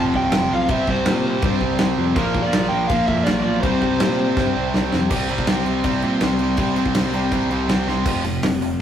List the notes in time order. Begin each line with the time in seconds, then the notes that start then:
Already playing: F1 F2 C3 F3 C4
0.14 C2 F2 C3 F3 G5, kick
0.32 F1 F2 C3 F3, snare, crash
0.51 B1 F2 C3 F3 F5
0.68 C2 C3 G3 C4 E5, kick, crash
0.87 C2 C3 G3 C4 C5, kick
1.05 A#2 C3 G3 C4, snare, crash
1.24 C3 G3 C4
1.42 G2 C3 G3 C4, kick, crash
1.61 C2 C3 G3 C4, kick
1.78 C2 C3 G3 C4, snare, crash
1.98 F2 C3 G3 C4
2.15 A#1 A#2 F3 A#3 A#4, kick, crash
2.34 A#2 F3 A#3, kick
2.42 D5
2.53 A#1 A#2 F3 A#3, snare, crash
2.69 A#1 A#2 F3 A#3 G5
2.87 A#1 A#2 F3 A#3 F5, kick, crash
2.92 A#3
3.06 F2 A#2 F3 A#3 E5, kick
3.24 A#1 A#2 F3 A#3 D5, snare, crash
3.43 B1 A#2 F3 A#3 D5
3.61 C2 C3 G3 C4 C5, kick, crash
3.66 C4
3.81 C2 C3 G3 C4, kick
4.00 A#2 C3 G3 C4, snare, crash
4.18 C3 G3 C4
4.37 G2 C3 G3 C4, kick, snare
4.55 C2 C3 G3 C4
4.73 C2 C3 G3 C4, snare
4.92 F2 C3 G3 C4, snare
5.10 C2 C3 G3 C4, kick, crash
5.29 C2 C3 G3 C4, crash
5.38 kick
5.47 C2 C3 G3 C4, snare, crash
5.66 C2 C3 G3 C4, crash
5.84 C2 C3 G3 C4, kick, crash
6.02 A#2 C3 G3 C4, crash
6.21 C2 C3 G3 C4, snare, crash
6.39 C2 C3 G3 C4, crash
6.57 C2 C3 G3 C4, kick, crash
6.76 C3 G3 C4, crash
6.86 kick
6.94 C2 C3 G3 C4, snare, crash
7.13 C3 G3 C4, crash
7.32 C2 C3 G3 C4, kick, crash
7.50 C2 C3 G3 C4, crash
7.68 C2 C3 G3 C4, snare, crash
7.87 C2 C3 G3 C4, snare
8.05 F1 F2 C3 F3, kick, crash
8.25 F2 C3, open hi-hat
8.43 F1 F2 C3, snare, open hi-hat
8.62 F2 C3, open hi-hat